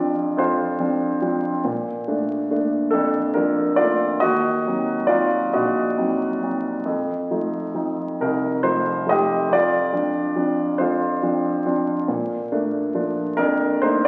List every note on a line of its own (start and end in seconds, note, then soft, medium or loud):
0.00 0.36 F2 medium
0.00 0.79 F3 soft
0.00 0.80 C4 soft
0.00 0.80 D4 soft
0.00 0.33 F4 medium
0.00 0.41 D5 medium
0.37 1.61 F2 medium
0.37 1.30 F4 medium
0.37 1.30 C5 medium
0.79 1.21 F3 soft
0.79 1.20 C4 soft
0.79 1.21 D4 medium
1.22 1.56 F3 soft
1.22 1.56 C4 soft
1.22 1.56 D4 soft
1.65 4.18 A#2 medium
2.08 2.49 A3 soft
2.08 2.50 A#3 soft
2.08 2.50 D4 soft
2.51 3.19 A3 soft
2.51 3.19 A#3 soft
2.51 2.92 D4 medium
2.91 4.18 F2 medium
2.91 3.33 D4 medium
2.91 3.36 A4 medium
3.34 4.05 F3 soft
3.34 3.80 A#3 soft
3.34 3.76 D4 medium
3.34 3.79 A#4 medium
3.76 4.19 F4 medium
3.76 4.22 D5 medium
3.81 4.14 A3 soft
3.81 4.15 A#3 soft
3.81 4.15 D4 soft
4.20 6.83 D#2 medium
4.20 5.05 F#4 medium
4.20 5.11 D#5 medium
4.67 5.08 F#3 soft
4.67 5.08 C4 soft
4.67 5.10 D#4 soft
5.07 5.80 F#3 soft
5.07 5.80 C4 soft
5.07 5.50 F4 medium
5.07 5.49 D5 medium
5.11 5.81 D#4 soft
5.53 6.83 A#1 medium
5.53 6.50 F#4 medium
5.53 6.49 D#5 medium
5.98 6.40 F#3 soft
5.98 6.42 C4 soft
5.98 6.42 D#4 soft
6.42 6.78 F#3 soft
6.42 6.78 C4 soft
6.42 6.79 D#4 soft
6.86 9.47 F2 medium
7.31 7.73 F3 soft
7.31 8.03 A3 soft
7.31 7.74 D#4 soft
7.74 8.46 F3 soft
7.74 8.46 C4 soft
7.74 8.21 D#4 soft
8.20 9.47 C2 medium
8.20 8.62 D#4 medium
8.20 8.66 A#4 medium
8.63 9.05 F3 soft
8.63 9.05 A3 soft
8.63 9.05 D#4 soft
8.63 9.04 C5 medium
9.06 9.41 F3 soft
9.06 9.42 A3 soft
9.06 9.42 D#4 soft
9.06 9.53 D#5 medium
9.11 9.49 G4 medium
9.49 10.78 F2 medium
9.49 10.85 D5 medium
9.54 10.78 F4 medium
9.93 10.34 F3 soft
9.93 10.35 C4 soft
9.93 10.35 D4 soft
10.36 11.06 F3 soft
10.36 11.06 C4 soft
10.36 11.06 D4 medium
10.78 12.05 F2 medium
10.78 11.74 F4 medium
10.78 11.72 C5 medium
11.23 11.64 F3 medium
11.23 11.65 C4 soft
11.23 11.65 D4 medium
11.66 12.00 F3 soft
11.66 12.00 C4 soft
11.66 12.01 D4 soft
12.08 14.08 A#2 medium
12.52 13.22 A3 soft
12.52 12.93 A#3 soft
12.52 12.94 D4 medium
12.94 13.66 F3 soft
12.94 13.66 A#3 soft
12.94 13.37 D4 medium
13.37 14.08 F2 medium
13.37 13.80 D4 medium
13.37 13.80 A#4 medium
13.82 14.08 A3 medium
13.82 14.08 A#3 soft
13.82 14.08 D4 medium
13.82 14.04 D#4 medium
13.82 14.06 C5 medium